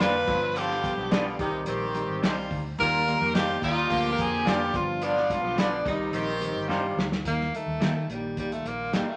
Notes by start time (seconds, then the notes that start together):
Already playing: D3 F3 A#3 B3 D4 F4
0.00 F1 A#3 D4 F4 A#4 B4 B5, snare, closed hi-hat
0.27 G1 F3 G3 G#3 D4 F4, kick, crash
0.34 B3
0.55 D3 B3 F4 G4 G5, closed hi-hat
0.71 snare
0.83 F3 G3 B3 D4 G4, kick, closed hi-hat
0.97 B1 D3 B3 G4
1.10 D3 G3 B3 D4 F4 B4, snare, closed hi-hat
1.39 C2 C3 D#3 G3 C4 D#4 G4, kick, closed hi-hat
1.66 A#1 D#3 C4 G4, closed hi-hat
1.94 D#3 G3 C4 D#4 G4, closed hi-hat
2.09 G#1
2.22 C2 C3 G3 C4 D#4 F4 G4 C5, snare, closed hi-hat
2.51 D2, kick, open hi-hat
2.78 D#2 A#2 D#3 G3 A#3 D#4 F4 G4 A#4 A#5, kick, closed hi-hat
3.07 D#3 G3 A#3 D#4 G4, closed hi-hat
3.20 F2 D#3 A#3 G4
3.34 F3 A#3 D4 D#4 F4 G4 A#4 G5, snare, closed hi-hat
3.62 D#2 A#2 G3 D#4 F4 F5, kick, closed hi-hat
3.89 D2 D3 F3 A#3 D4 F4 G4, kick, closed hi-hat
4.12 A#4 A#5
4.18 F2 D3 F3 A#3 D4 F4 G#4 G#5, kick, closed hi-hat
4.45 F1 D3 A#3 B3 D4 F4 G4 A#4 G5, snare, closed hi-hat
4.73 G1 F3 G3 B3 D4 F4 F5, kick, closed hi-hat
5.02 D3 B3 D4 F4 D5, closed hi-hat
5.17 snare
5.30 F3 G3 G#3 D4 F4 F5, kick, closed hi-hat
5.37 B3
5.43 B1 D3 B3 G4
5.56 D3 G3 B3 D4 F4 B4 D5, snare, closed hi-hat
5.60 D4
5.84 C2 C3 D#3 G3 C4 D#4 G4 D#5, kick, closed hi-hat
6.12 A#1 D#3 C4 G4, closed hi-hat
6.40 D#3 G3 C4 D#4 G4, closed hi-hat
6.56 G1
6.68 G2 C3 G3 C4 D#4 F4 G4 C5, snare
6.97 D2, snare
7.12 snare
7.24 D#2 D#3 G3 A#3 D#4, kick, closed hi-hat
7.41 snare
7.52 D#3 G3 A3 D#4, closed hi-hat
7.66 D#2
7.80 D#3 A#3 D#4 G4 A#4, snare, closed hi-hat
8.08 A#1 D#3 G3 A#3 D4, closed hi-hat
8.16 D#4
8.36 C2 A#2 G3 F4, kick, closed hi-hat
8.52 A3, closed hi-hat
8.65 A#1 A#3, closed hi-hat
8.92 G3 A#3 D#4 G4 A#4, snare, closed hi-hat
9.08 A3